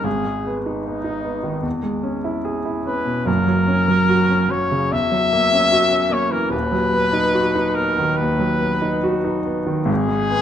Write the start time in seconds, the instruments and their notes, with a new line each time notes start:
0.04 grand piano G#1 G#2, trumpet G#4
0.24 grand piano G#3
0.46 grand piano B3
0.66 grand piano D#4
0.86 grand piano B3, trumpet D#4
1.04 grand piano D#4
1.24 grand piano B3
1.43 grand piano D#3
1.62 grand piano E2
1.83 grand piano G#3
2.03 grand piano C#4
2.24 grand piano E4
2.45 grand piano G#4
2.65 grand piano E4
2.86 grand piano C#4, trumpet B4
3.06 grand piano B2
3.25 grand piano F#1 F#2, trumpet A#4
3.47 grand piano F#3
3.67 grand piano C#4
3.88 grand piano F#3
4.09 grand piano F#4
4.29 grand piano C#4
4.49 grand piano F#3, trumpet C#5
4.71 grand piano C#3
4.92 grand piano E2, trumpet E5
5.12 grand piano F#3
5.33 grand piano A#3
5.53 grand piano C#4
5.72 grand piano F#4
5.91 grand piano C#4
6.10 grand piano A#3, trumpet C#5
6.30 grand piano E3, trumpet A#4
6.50 grand piano D#1 D#2, trumpet B4
6.72 grand piano F#3
6.93 grand piano B3
7.13 grand piano D#4
7.34 grand piano F#4
7.55 grand piano D#4
7.75 grand piano B3, trumpet A#4
7.98 grand piano D#3
8.17 grand piano D#2, trumpet B4
8.39 grand piano F#3
8.61 grand piano B3
8.82 grand piano D#4
9.03 grand piano F#4
9.24 grand piano D#4
9.45 grand piano B3
9.67 grand piano D#3
9.85 grand piano G#1 G#2, trumpet G#4
10.08 grand piano G#3
10.30 grand piano B3